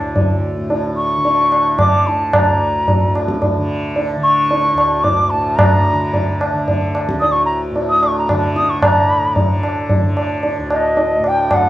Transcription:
Already playing: A2 D3
0.00 D2
0.16 tabla tin, tabla ge
0.56 A2
0.70 tabla tin
0.97 C#6
1.16 D3
1.25 tabla tin
1.52 tabla na
1.77 D3 D6, tabla na, tabla ge
2.07 A5, tabla te
2.33 D2 A#5, tabla na, tabla ge
2.88 tabla tin, tabla ge
2.96 A2
3.16 tabla na
3.28 tabla ke
3.42 tabla tin, tabla ge
3.57 D3
3.96 tabla tin
4.16 D3
4.23 C#6
4.51 tabla tin
4.73 D2
4.78 tabla na
5.04 D6, tabla tin, tabla ge
5.30 A2 A5
5.56 A#5, tabla na, tabla ge
5.92 D3
6.14 tabla tin, tabla ge
6.41 tabla na
6.53 D3
6.68 tabla tin, tabla ge
6.95 tabla na
7.09 D2, tabla ke
7.21 D#6, tabla tin
7.32 C#6
7.46 A#5
7.71 A2
7.76 tabla tin
7.90 D#6
8.02 C#6, tabla na
8.19 A#5
8.29 D3, tabla na, tabla ge
8.56 D#6, tabla te
8.70 C#6
8.81 A2 A#5, tabla na, tabla ge
9.36 D3, tabla tin, tabla ge
9.63 tabla na
9.89 tabla tin, tabla ge
10.00 D3
10.17 tabla na
10.43 tabla tin
10.58 D2
10.70 D#5, tabla na
10.97 tabla tin
11.19 A2
11.24 G5, tabla na
11.51 F#5, tabla na, tabla ge

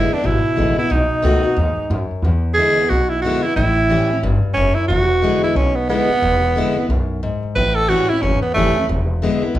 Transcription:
Already playing: F#1 E2 G#3 B3 E4
0.11 B3 D4 E4, muted upright bass stroke
0.24 G#1 B2 E4
0.45 muted upright bass stroke
0.56 A1 D3 G#3 B3 E4
0.76 B3 E4, muted upright bass stroke
0.90 B1 B2 D#4
1.11 muted upright bass stroke
1.22 C#2 D#3 A3 B3 F#4
1.43 B3 F#4, muted upright bass stroke
1.56 D#2 G#2
1.77 muted upright bass stroke
1.90 F#2
2.11 muted upright bass stroke
2.22 E2
2.54 D3 G#3 G#4
2.59 B3 E4
2.77 B3 E4, muted upright bass stroke
2.90 B1 B2 F#4
3.09 E4
3.22 D3 G#3 B3 F#4
3.26 E4
3.43 E4, muted upright bass stroke
3.47 B3
3.56 A1 A2 E4
3.89 E3 G3 C#4 E4
4.10 C#4 E4, muted upright bass stroke
4.23 G1 G2
4.42 muted upright bass stroke
4.54 F#1 F#2 C#4
4.75 E4, muted upright bass stroke
4.88 E1 E2 F#4
5.22 D3 G#3 B3 E4
5.42 E4, muted upright bass stroke
5.55 B1 B2 C#4
5.76 B3
5.89 D3 G#3 B3 E4
6.09 E4, muted upright bass stroke
6.22 E1 E2
6.56 D3 G#3 B3 E4
6.76 B3 E4, muted upright bass stroke
6.89 B1 F#2
7.23 G#2
7.43 muted upright bass stroke
7.56 A1 A2 B4
7.75 A4
7.89 E3 G3 C#4 E4 F#4
8.09 C#4 E4, muted upright bass stroke
8.22 G1 E2 C#4
8.42 B3, muted upright bass stroke
8.54 F#1 E3 G3 A3 C#4 E4
8.76 C#4 E4, muted upright bass stroke
8.89 E1 E2
9.22 D3 G#3 B3 E4
9.42 B3 E4, muted upright bass stroke
9.54 B1 B2

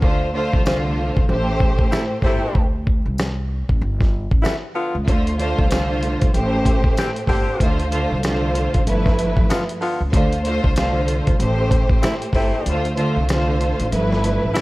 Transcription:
0.01 D2 D3 A3 F4 C5, kick
0.34 D3 A3 F4 C5
0.53 C2, kick
0.65 D3 A3 F4 C5, snare, tambourine
1.17 C2, kick
1.28 A1 A2 A3 G4 C5
1.60 kick
1.79 A1, kick
1.91 C3 A3 E4, snare, tambourine
2.22 G1 A2 C3 A3 E4 G4 C5, kick, snare
2.55 D2, kick
2.87 kick
3.06 C2
3.18 snare, tambourine
3.69 A1, kick
3.81 G1
4.01 kick, snare
4.31 A1, kick
4.43 B2 A3 E4, snare, tambourine
4.75 D3 B3 F4
4.95 C#2
5.07 D2 D3 A3 F4 C5, kick, closed hi-hat
5.27 closed hi-hat
5.39 D3 A3 F4 C5, closed hi-hat
5.59 C2, kick
5.70 D3 A3 F4 C5, snare, closed hi-hat, tambourine
6.03 closed hi-hat
6.21 C2, kick, closed hi-hat
6.33 A1 A2 A3 G4 C5, closed hi-hat
6.66 kick, closed hi-hat
6.84 A1, kick
6.97 E3 C4 G4, snare, closed hi-hat, tambourine
7.16 closed hi-hat
7.27 G1 A2 D3 A3 C4 G4 C5, kick, snare, open hi-hat
7.60 D2 D3 A3 F4 C5, kick, closed hi-hat
7.80 closed hi-hat
7.91 D3 A3 F4 C5, closed hi-hat
8.11 C2
8.23 D3 A3 F4 C5, snare, closed hi-hat, tambourine
8.55 closed hi-hat
8.74 A1, kick, closed hi-hat
8.86 G1 G2 F3 A3 E4 B4, closed hi-hat
9.06 kick, snare
9.19 closed hi-hat
9.37 A1, kick
9.50 D3 B3 F4, snare, closed hi-hat, tambourine
9.69 closed hi-hat
9.81 D3 B3 F4, open hi-hat
10.01 C#2
10.12 D2 D3 A3 F4 C5, kick, closed hi-hat
10.32 closed hi-hat
10.44 D3 A3 F4 C5, closed hi-hat
10.64 C2, kick
10.75 D3 A3 F4 C5, snare, closed hi-hat, tambourine
11.08 closed hi-hat
11.27 C2, kick, closed hi-hat
11.39 A1 A2 A3 G4 C5, closed hi-hat
11.71 kick, closed hi-hat
11.89 A1, kick
12.02 C3 A3 E4, snare, closed hi-hat, tambourine
12.22 closed hi-hat
12.33 G1 A2 C3 A3 E4 G4 C5, kick, snare, open hi-hat
12.66 D2 D3 A3 F4 C5, closed hi-hat
12.85 closed hi-hat
12.97 D3 A3 F4 C5, closed hi-hat
13.16 C2
13.28 D3 A3 F4 C5, snare, closed hi-hat, tambourine
13.61 closed hi-hat
13.79 A1, closed hi-hat
13.92 G1 G2 F3 A3 E4 B4, closed hi-hat
14.12 snare
14.24 closed hi-hat
14.43 A1
14.53 B2 A3 E4, snare, closed hi-hat, tambourine

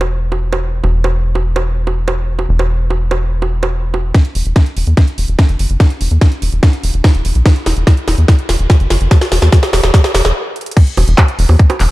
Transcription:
Already playing: E1
0.01 high bongo
0.32 high bongo
0.53 high bongo
0.84 E1, high bongo
1.04 high bongo
1.35 high bongo
1.56 high bongo
1.87 high bongo
2.08 high bongo
2.39 high bongo
2.49 E1
2.59 high bongo
2.90 high bongo
3.11 high bongo
3.42 high bongo
3.63 high bongo
3.94 high bongo
4.15 kick, snare, closed hi-hat
4.25 closed hi-hat
4.35 E1, open hi-hat
4.46 E1, closed hi-hat
4.56 kick, snare, closed hi-hat
4.66 closed hi-hat
4.77 E1, open hi-hat
4.87 E2, closed hi-hat
4.97 kick, snare, closed hi-hat
5.08 closed hi-hat
5.18 E1, open hi-hat
5.28 E1, closed hi-hat
5.39 kick, snare, closed hi-hat
5.49 F#1, closed hi-hat
5.59 F#1, open hi-hat
5.70 F#1, closed hi-hat
5.80 kick, snare, closed hi-hat
5.90 closed hi-hat
6.01 E1, open hi-hat
6.11 E2, closed hi-hat
6.21 kick, snare, closed hi-hat
6.32 closed hi-hat
6.42 E1, open hi-hat
6.52 E1, closed hi-hat
6.63 kick, snare, closed hi-hat
6.73 closed hi-hat
6.83 E1, open hi-hat
6.94 E1, closed hi-hat
7.04 kick, snare, closed hi-hat
7.15 E1, closed hi-hat
7.25 E1, open hi-hat
7.35 B1, closed hi-hat
7.46 kick, snare, closed hi-hat
7.56 closed hi-hat
7.66 E1, snare, open hi-hat
7.77 E1, closed hi-hat
7.87 kick, snare, closed hi-hat
7.97 closed hi-hat
8.08 E1, snare, open hi-hat
8.18 E2, closed hi-hat
8.28 kick, snare, closed hi-hat
8.39 closed hi-hat
8.49 E1, snare, open hi-hat
8.59 E1, closed hi-hat
8.70 kick, snare, closed hi-hat
8.80 F#1, closed hi-hat
8.90 F#1, snare, open hi-hat
9.01 F#1, closed hi-hat
9.11 kick, snare, closed hi-hat
9.21 snare, closed hi-hat
9.32 E1, snare, open hi-hat
9.42 E2, snare, closed hi-hat
9.52 kick, snare, closed hi-hat
9.63 snare, closed hi-hat
9.73 E1, snare, open hi-hat
9.83 E1, snare, closed hi-hat
9.94 kick, snare, closed hi-hat
10.04 snare, closed hi-hat
10.15 E1, snare, open hi-hat
10.25 E1, snare
10.56 closed hi-hat
10.61 closed hi-hat
10.66 closed hi-hat
10.71 closed hi-hat
10.77 kick, closed hi-hat, crash
10.87 closed hi-hat
10.97 E1, open hi-hat, high bongo
11.08 E1, closed hi-hat
11.18 kick, clap, closed hi-hat, high bongo
11.28 closed hi-hat
11.39 E1, open hi-hat
11.49 E2, open hi-hat, high bongo
11.59 kick, closed hi-hat
11.70 closed hi-hat, high bongo
11.80 E1, clap, open hi-hat

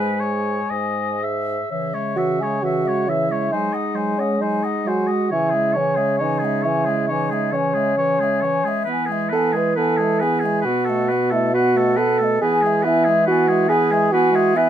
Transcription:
Already playing: G#2 G#3 G#4 B4 G#5
0.20 G#4 C#5
0.70 G#2 D#5
1.23 G#4 E5
1.70 C#3 E3 C#5 E5
1.94 G#3 C#5 E5
2.16 E3 F#4 C#5 E5
2.39 G#3 G#4 C#5 E5
2.62 E3 F#4 C#5 E5
2.85 G#3 C#5 E5
3.07 E3 E4 C#5 E5
3.29 G#3 C#5 E5
3.51 F#3 G#3 D#4 C5 G#5
3.72 G#3 D#5 F#5
3.95 F#3 C5 G#5
4.17 G#3 C#4 D#5 F#5
4.39 F#3 D#4 C5 G#5
4.63 G#3 D#5 F#5
4.85 F#3 F#4 C5 G#5
5.07 G#3 D#5 F#5
5.30 C#3 E3 E4 C#5 G#5
5.50 G#3 G#4
5.55 E5
5.73 E3 C#4 C#5
5.78 G#5
5.96 G#3 G#4 E5
6.18 E3 D#4 C#5 G#5
6.39 G#3 G#4
6.45 E5
6.62 E3 E4 C#5
6.67 G#5
6.85 G#3 G#4
6.89 E5
7.08 E3 D#4 C#5 G#5
7.30 G#3 G#4 E5
7.52 E3 C#4 C#5 G#5
7.74 G#3 G#4 E5
7.97 E3 C#5 G#5
8.19 G#3 G#4
8.24 E5
8.41 E3 C#5 G#5
8.64 G#3 G#4 E5
8.84 E3 B3 B4
8.92 G#5
9.06 G#3 G#4
9.12 E5
9.29 B3 A4 B4
9.36 G#5
9.53 G#3 G#4 B4 E5
9.76 B3 A4 B4 G#5
9.97 G#3 G#4 E5
10.20 B3 G#4 B4 G#5
10.40 G#4
10.44 G#3 E5
10.61 B2 B4
10.66 B3 F#4 F#5
10.85 A3 A4
10.90 D#5
11.09 B3 B4 F#5
11.31 A3 E4 A4 D#5
11.54 B3 F#4 B4 F#5
11.75 A3 A4 D#5
11.97 B3 A4 B4 F#5
12.19 A3 A4
12.24 D#5
12.41 E3 B3 G#4 B4
12.45 G#5
12.62 G#3 G#4
12.66 E5
12.82 B3 E4 B4
12.88 G#5
13.04 G#3 G#4
13.09 E5
13.26 B3 F#4 B4 G#5
13.48 G#3 G#4 E5
13.68 B3 G#4 B4
13.72 G#5
13.91 G#3 G#4 E5
14.13 B3 F#4 B4 G#5
14.32 G#3 G#4 E5
14.55 B3 E4 B4 G#5

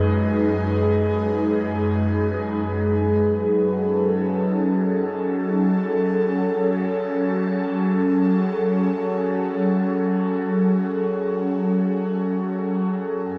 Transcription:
Already playing: F#2 G#3 D#4 G#4 B4
3.20 F#3
3.51 A4
3.56 C#4
13.23 F#2

